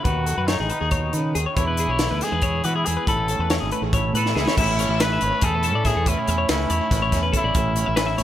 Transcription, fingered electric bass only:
0.05 0.34 D#2 medium
0.38 0.57 F#2 medium
0.60 0.69 A1 medium
0.81 1.10 D#2 medium
1.13 1.32 D#3 medium
1.35 1.45 D#2 medium
1.57 1.85 E2 medium
1.88 2.07 B1 medium
2.11 2.20 D2 medium
2.32 2.60 E2 medium
2.64 2.83 E3 medium
2.87 2.96 E2 medium
3.08 3.35 A1 medium
3.39 3.58 E2 medium
3.62 3.71 G#1 medium
3.82 4.10 A1 medium
4.13 4.32 A2 medium
4.35 4.45 C#2 medium
4.57 4.85 A1 medium
4.89 5.17 A1 medium
5.22 5.31 G#1 medium
5.42 5.75 E2 medium
5.75 5.93 A2 medium
5.96 6.14 E2 medium
6.28 6.46 E2 loud
6.49 6.67 C#2 medium
6.70 6.79 E2 medium
6.91 7.09 A1 loud
7.12 7.31 E2 medium
7.44 7.53 A1 medium
7.55 7.83 A1 medium
7.88 8.15 A1 medium
8.18 8.23 G#1 medium

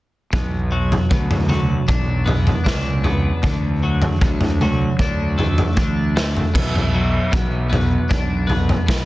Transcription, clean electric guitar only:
0.33 1.09 B2 medium
0.72 1.48 F#3 medium
1.10 3.05 B2 medium
1.49 3.83 F#3 medium
1.88 2.64 D4 medium
2.26 3.03 B3 medium
2.64 5.01 D4 medium
3.04 3.43 B3 medium
3.43 4.20 D3 medium
3.83 4.61 F#3 medium
4.21 6.15 D3 medium
4.62 6.55 F#3 medium
5.01 5.76 D4 medium
5.38 6.15 A3 medium
5.77 6.54 D4 medium
6.16 6.55 A3 medium
6.54 7.31 B2 medium
6.94 8.88 F#3 medium
7.32 8.86 B2 medium
7.70 8.46 B3 medium
8.09 9.05 D4 medium
8.47 9.05 B3 medium
8.87 9.05 B2 medium

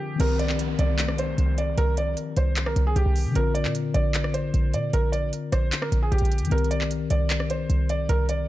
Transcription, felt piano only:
0.00 0.17 G4 medium
0.20 0.36 A#4 loud
0.39 0.55 D5 medium
0.79 1.16 D5 medium
1.19 1.56 C5 medium
1.58 1.74 D5 medium
1.78 1.93 A#4 loud
1.98 2.13 D5 medium
2.37 2.65 C5 medium
2.67 2.82 A#4 medium
2.87 2.94 G#4 medium
2.96 3.33 G4 medium
3.36 3.51 A#4 loud
3.55 3.70 D5 medium
3.94 4.32 D5 medium
4.34 4.71 C5 medium
4.74 4.89 D5 medium
4.94 5.09 A#4 loud
5.12 5.28 D5 medium
5.52 5.80 C5 medium
5.82 5.97 A#4 medium
6.03 6.10 G#4 medium
6.12 6.49 G4 medium
6.52 6.67 A#4 loud
6.71 6.86 D5 medium
7.11 7.48 D5 medium
7.50 7.87 C5 medium
7.90 8.05 D5 medium
8.09 8.25 A#4 loud
8.29 8.45 D5 medium

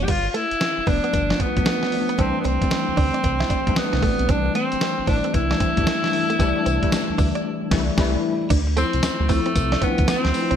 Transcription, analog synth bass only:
0.08 0.29 G1 loud
0.51 0.55 F1 soft
0.78 0.81 F1 medium
0.87 1.00 F1 medium
1.14 1.34 G1 loud
1.57 1.64 B1 medium
2.19 2.32 C2 loud
2.45 2.58 C2 medium
2.88 2.92 D2 medium
2.98 3.11 D2 medium
3.24 3.45 C2 loud
3.67 3.75 C2 medium
3.93 4.01 C2 medium
4.03 4.16 A1 loud
4.20 4.27 B1 medium
4.29 4.50 C2 loud
4.73 4.76 A1 soft
4.99 5.02 A1 soft
5.08 5.21 A1 medium
5.34 5.55 C2 loud
5.78 5.85 E2 medium
6.40 6.53 C2 loud
6.66 6.79 C2 medium
7.10 7.13 D2 soft
7.19 7.32 D2 medium
7.72 7.91 C2 loud
7.98 8.17 C2 loud
8.50 8.84 D2 loud
8.94 9.01 C2 medium
9.04 9.10 D2 soft
9.20 9.41 D2 loud
9.56 9.76 C2 loud
9.99 10.06 D2 medium
10.08 10.15 D2 soft
10.25 10.32 D2 medium
10.51 10.56 C2 medium

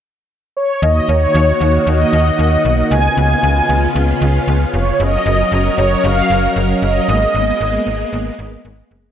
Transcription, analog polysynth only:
0.57 0.81 C#5 medium
0.83 1.09 D#5 medium
1.09 1.89 C#5 medium
1.87 2.87 D#5 loud
2.91 3.16 G#5 loud
3.18 4.18 G#5 loud
4.74 5.01 C#5 medium
5.00 5.80 D#5 loud
5.78 6.05 C#5 medium
6.04 6.53 F5 loud
6.82 8.87 D#5 loud

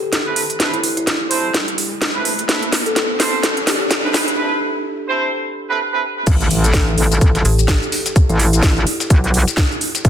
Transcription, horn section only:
0.26 0.43 C4 medium
0.26 0.43 E4 medium
0.26 0.43 A4 medium
0.26 0.43 B4 medium
0.60 0.78 C4 medium
0.60 0.78 E4 medium
0.60 0.78 A4 medium
0.60 0.78 B4 medium
1.31 1.49 C4 medium
1.31 1.49 E4 medium
1.31 1.49 A4 medium
1.31 1.49 C5 loud
2.15 2.32 C4 medium
2.15 2.32 E4 medium
2.15 2.32 A4 medium
2.15 2.32 B4 medium
2.49 2.67 C4 medium
2.49 2.67 E4 medium
2.49 2.67 A4 medium
2.49 2.67 B4 medium
3.20 3.38 C4 medium
3.20 3.38 E4 medium
3.20 3.38 A4 medium
3.20 3.38 C5 loud
4.04 4.21 C4 medium
4.04 4.21 E4 medium
4.04 4.21 A4 medium
4.04 4.21 B4 medium
4.38 4.56 C4 medium
4.38 4.56 E4 medium
4.38 4.56 A4 medium
4.38 4.56 B4 medium
5.09 5.27 C4 loud
5.09 5.27 E4 medium
5.09 5.27 A4 medium
5.09 5.27 C5 loud
5.70 5.79 C4 medium
5.70 5.79 E4 medium
5.70 5.79 A4 medium
5.70 5.79 B4 loud
5.93 6.02 C4 medium
5.93 6.02 E4 medium
5.93 6.02 A4 medium
5.93 6.02 B4 medium

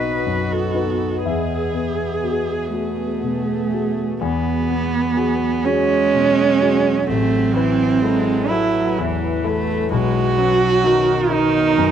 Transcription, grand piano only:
0.00 1.21 B1 soft
0.00 1.28 B3 soft
0.00 0.74 D#4 soft
0.00 0.76 B4 soft
0.00 1.27 C#5 medium
0.00 1.21 D#5 medium
0.26 1.05 F#2 soft
0.74 1.21 D#4 soft
0.74 1.21 B4 soft
1.25 4.16 E2 soft
1.25 3.68 E5 medium
1.73 2.53 B3 soft
2.24 2.69 F#4 soft
2.24 2.69 G#4 soft
2.74 3.19 F#4 soft
2.74 3.19 G#4 soft
3.23 4.02 B2 soft
3.73 4.17 F#4 soft
3.73 4.17 G#4 soft
4.21 7.03 E2 medium
4.70 5.46 B3 soft
5.17 5.60 F#4 soft
5.17 5.60 G#4 soft
5.65 6.08 F#4 soft
5.65 6.09 G#4 soft
6.14 6.89 B2 soft
6.61 7.04 F#4 soft
6.61 7.04 G#4 soft
7.09 9.88 A1 medium
7.56 8.31 B4 soft
8.04 8.47 E4 soft
8.04 8.47 A4 soft
8.51 8.93 E4 soft
8.51 8.94 A4 soft
8.98 9.73 E2 soft
9.44 9.87 E4 soft
9.44 9.87 A4 soft
9.91 11.91 B1 medium
10.38 11.12 C#4 soft
10.84 11.27 D#4 soft
10.84 11.27 F#4 soft
11.30 11.74 D#4 soft
11.30 11.74 F#4 soft
11.78 11.91 F#2 soft

